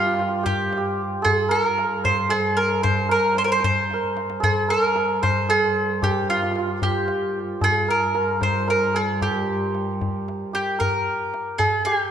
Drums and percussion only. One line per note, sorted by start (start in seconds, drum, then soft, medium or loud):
0.19 tombak tek medium
0.46 tombak dum medium
0.59 tombak ka soft
0.73 tombak tek medium
1.26 tombak dum medium
1.52 tombak ka soft
1.78 tombak tek medium
2.05 tombak dum medium
2.19 tombak ka soft
2.32 tombak tek medium
2.84 tombak dum medium
3.11 tombak ka soft
3.37 tombak tek medium
3.64 tombak dum loud
3.77 tombak ka soft
3.90 tombak tek medium
4.03 tombak ka medium
4.17 tombak tek medium
4.30 tombak ka medium
4.43 tombak dum loud
4.70 tombak ka soft
4.96 tombak tek medium
5.23 tombak dum medium
5.36 tombak ka soft
5.50 tombak tek medium
6.03 tombak dum loud
6.56 tombak tek medium
6.82 tombak dum medium
6.95 tombak ka soft
7.08 tombak tek medium
7.61 tombak dum medium
8.15 tombak tek medium
8.41 tombak dum medium
8.55 tombak ka soft
8.68 tombak tek medium
9.22 tombak dum medium
9.75 tombak tek medium
10.01 tombak dum medium
10.15 tombak ka soft
10.28 tombak tek medium
10.81 tombak dum medium
11.08 tombak ka soft
11.34 tombak tek medium
11.59 tombak dum medium
11.73 tombak ka soft
11.86 tombak tek medium